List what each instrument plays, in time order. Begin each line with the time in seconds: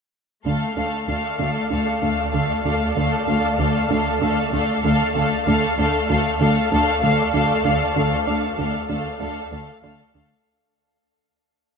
0.45 synth drone D2, cello section D2, double bass section D2, analog synth bass D3, viola section A3, synth texture A4 D5 F5, violin section A4 F5
0.76 double bass section D2, cello section D2, viola section A3, analog synth bass D4, violin section A4 F5
1.08 double bass section D2, cello section D2, analog synth bass D3, viola section A3, violin section A4 F5
1.39 double bass section D2, cello section D2, analog synth bass D3, viola section A3, violin section A4 F5
1.70 double bass section D2, cello section D2, viola section A3, analog synth bass D4, violin section A4 F5
2.02 double bass section D2, cello section D2, analog synth bass D3, viola section A3, violin section A4 F5
2.32 double bass section D2, cello section D2, analog synth bass D3, viola section A3, violin section A4 F5
2.65 cello section D2, double bass section D2, analog synth bass D3, viola section A3, violin section A4 F5
2.96 double bass section D2, cello section D2, analog synth bass D3, viola section A3, violin section A4 F5
3.27 cello section D2, double bass section D2, viola section A3, analog synth bass D4, violin section A4 F5
3.59 cello section D2, double bass section D2, analog synth bass D3, viola section A3, violin section A4 F5
3.90 cello section D2, double bass section D2, analog synth bass D3, viola section A3, violin section A4 F5
4.21 double bass section D2, cello section D2, viola section A3, analog synth bass D4, violin section A4 F5
4.52 cello section D2, double bass section D2, analog synth bass D3, viola section A3, violin section A4 F5
4.83 cello section D2, double bass section D2, analog synth bass D3, viola section A3, violin section A4 F5
5.15 cello section D2, double bass section D2, analog synth bass D3, viola section A3, violin section A4 F5
5.46 cello section D2, double bass section D2, synth drone D2, analog synth bass D3, viola section A3, violin section A4 F5, synth texture A4 D5 F5
5.78 cello section D2, double bass section D2, viola section A3, analog synth bass D4, violin section A4 F5
6.09 cello section D2, double bass section D2, analog synth bass D3, viola section A3, violin section A4 F5
6.40 cello section D2, double bass section D2, analog synth bass D3, viola section A3, violin section A4 F5
6.71 cello section D2, double bass section D2, viola section A3, analog synth bass D4, violin section A4 F5
7.02 cello section D2, double bass section D2, analog synth bass D3, viola section A3, violin section A4 F5
7.34 cello section D2, double bass section D2, analog synth bass D3, viola section A3, violin section A4 F5
7.64 cello section D2, double bass section D2, analog synth bass D3, viola section A3, violin section A4 F5
7.95 cello section D2, double bass section D2, analog synth bass D3, viola section A3, violin section A4 F5
8.27 cello section D2, double bass section D2, viola section A3, analog synth bass D4, violin section A4 F5
8.57 cello section D2, double bass section D2, analog synth bass D3, viola section A3, violin section A4 F5
8.89 cello section D2, double bass section D2, analog synth bass D3, viola section A3, violin section A4 F5
9.20 cello section D2, double bass section D2, viola section A3, analog synth bass D4, violin section A4 F5
9.52 cello section D2, double bass section D2, analog synth bass D3, viola section A3, violin section A4 F5
9.83 cello section D2, double bass section D2, analog synth bass D3, viola section A3, violin section A4 F5
10.14 cello section D2, double bass section D2, analog synth bass D3, viola section A3, violin section A4 F5